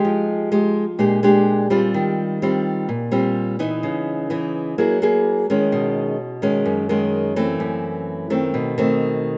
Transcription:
0.00 0.48 G#3 medium
0.00 0.48 D#4 medium
0.00 0.48 G4 medium
0.04 0.97 F3 medium
0.52 0.84 G#3 medium
0.52 0.84 D#4 medium
0.52 0.84 G4 medium
0.99 1.91 A#2 medium
0.99 1.19 G#3 medium
0.99 1.19 D4 medium
0.99 1.19 G4 medium
1.23 1.66 G#3 medium
1.23 1.67 D4 medium
1.23 1.67 G4 medium
1.70 2.37 G3 medium
1.70 2.37 C4 medium
1.70 2.38 F4 medium
1.94 2.86 D#3 medium
2.42 2.89 G3 medium
2.42 2.88 C4 medium
2.42 2.89 F4 medium
2.89 3.80 A#2 medium
3.11 3.55 G3 medium
3.11 3.55 C4 medium
3.11 3.56 F4 medium
3.59 4.26 E3 medium
3.59 4.26 B3 medium
3.59 4.26 D#4 medium
3.83 4.75 C#3 medium
4.30 4.75 E3 medium
4.30 4.75 B3 medium
4.30 4.76 D#4 medium
4.78 5.49 F#3 medium
4.78 4.97 A#3 medium
4.78 4.97 E4 soft
4.78 4.98 G#4 medium
5.02 5.45 A#3 medium
5.02 5.45 E4 medium
5.02 5.45 G#4 medium
5.50 6.16 D#3 medium
5.50 6.16 G#3 medium
5.50 6.16 C#4 medium
5.72 6.64 B2 medium
6.42 6.85 D#3 medium
6.42 6.86 G#3 medium
6.42 6.86 C#4 medium
6.65 7.57 F#2 medium
6.89 7.32 D#3 medium
6.89 7.33 G#3 medium
6.89 7.33 C#4 medium
7.36 8.27 E3 medium
7.36 8.27 A3 medium
7.36 8.27 C4 medium
7.60 8.52 F#2 medium
8.30 8.74 D#3 medium
8.30 8.74 A3 medium
8.30 8.74 C4 medium
8.54 9.38 B2 medium
8.78 9.38 D#3 medium
8.78 9.38 A3 medium
8.78 9.38 C4 medium

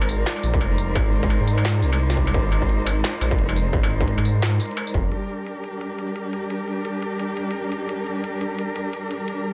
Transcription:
0.00 0.25 G#1 loud
0.00 5.08 G#3 medium
0.00 5.08 D#4 medium
0.00 5.08 A#4 medium
0.00 5.08 C5 medium
0.00 5.13 D5 medium
0.00 struck metal medium
0.09 closed hi-hat medium
0.09 tambourine medium
0.26 snare loud
0.26 closed hi-hat medium
0.26 tambourine medium
0.36 struck metal soft
0.43 0.60 A#1 medium
0.43 closed hi-hat medium
0.43 tambourine medium
0.54 kick loud
0.61 0.95 F1 medium
0.61 closed hi-hat medium
0.61 struck metal soft
0.78 closed hi-hat medium
0.78 tambourine medium
0.95 1.39 G#1 loud
0.95 kick loud
0.95 closed hi-hat medium
0.95 struck metal medium
1.13 closed hi-hat soft
1.23 kick loud
1.30 closed hi-hat medium
1.30 struck metal medium
1.40 1.84 G#2 loud
1.48 closed hi-hat medium
1.48 tambourine medium
1.58 struck metal medium
1.65 snare loud
1.65 closed hi-hat medium
1.82 2.33 C2 loud
1.82 closed hi-hat medium
1.82 tambourine medium
1.93 struck metal medium
2.00 closed hi-hat medium
2.10 snare soft
2.10 tambourine medium
2.17 kick medium
2.17 closed hi-hat medium
2.27 struck metal medium
2.34 3.03 G#1 loud
2.34 kick loud
2.34 closed hi-hat medium
2.52 closed hi-hat soft
2.52 struck metal medium
2.62 kick medium
2.69 closed hi-hat medium
2.87 closed hi-hat medium
2.87 tambourine medium
2.87 struck metal medium
3.04 snare loud
3.04 closed hi-hat medium
3.04 tambourine medium
3.21 3.37 A#1 medium
3.21 closed hi-hat medium
3.21 tambourine medium
3.21 struck metal medium
3.31 kick loud
3.39 3.72 F1 loud
3.39 closed hi-hat medium
3.49 struck metal medium
3.56 closed hi-hat medium
3.56 tambourine medium
3.73 4.17 G#1 loud
3.73 kick loud
3.73 closed hi-hat medium
3.83 struck metal medium
3.90 closed hi-hat soft
4.01 kick loud
4.08 closed hi-hat medium
4.18 4.59 G#2 loud
4.18 struck metal medium
4.25 closed hi-hat medium
4.25 tambourine medium
4.42 snare loud
4.42 closed hi-hat medium
4.42 struck metal medium
4.60 closed hi-hat medium
4.60 tambourine medium
4.65 closed hi-hat medium
4.71 closed hi-hat soft
4.77 closed hi-hat medium
4.77 struck metal medium
4.87 tambourine medium
4.94 5.11 F1 medium
4.94 kick medium
4.94 closed hi-hat medium
5.12 9.53 G3 medium
5.12 9.53 D4 medium
5.12 9.53 G4 medium
5.12 9.53 A#4 medium
5.12 closed hi-hat medium
5.29 closed hi-hat soft
5.46 closed hi-hat medium
5.64 closed hi-hat medium
5.81 closed hi-hat medium
5.99 closed hi-hat medium
6.16 closed hi-hat medium
6.33 closed hi-hat medium
6.50 closed hi-hat medium
6.68 closed hi-hat soft
6.85 closed hi-hat medium
7.02 closed hi-hat medium
7.19 closed hi-hat medium
7.37 closed hi-hat medium
7.51 closed hi-hat medium
7.72 closed hi-hat medium
7.89 closed hi-hat medium
8.06 closed hi-hat soft
8.24 closed hi-hat medium
8.41 closed hi-hat medium
8.59 closed hi-hat medium
8.76 closed hi-hat medium
8.93 closed hi-hat medium
9.11 closed hi-hat medium
9.28 closed hi-hat medium

